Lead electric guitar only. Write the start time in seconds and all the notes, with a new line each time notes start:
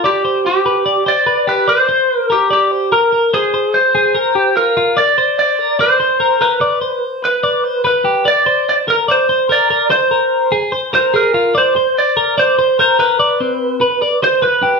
0.06 G4
0.46 G4
1.08 D5
1.49 B4
1.69 C5
2.18 A#4
2.32 G4
2.53 G4
2.93 A#4
3.34 G#4
3.74 C5
4.57 A#4
4.98 D5
5.39 D5
5.81 C5
6.42 B4
7.25 B4
7.87 B4
8.28 D5
8.69 D5
8.90 A#4
9.11 C5
9.52 D5
9.92 C5
10.95 C5
11.16 A#4
11.58 C5
11.98 D5
12.39 C5
12.80 C5
13.00 B4
14.24 C5
14.44 B4